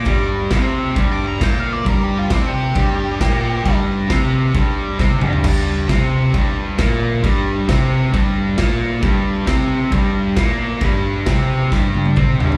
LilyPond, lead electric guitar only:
\new Staff \with { instrumentName = "Lead electric guitar" } { \time 4/4 \key c \major \tempo 4 = 134 d'''8 r4. \tuplet 3/2 { r8 d'''8 bes''8 g''8 f''8 d''8 } | \tuplet 3/2 { bes'8 g'8 f'8 d'8 g'4~ } g'2~ | g'8 r2. r8 | r1 |
r1 | r1 | r1 | }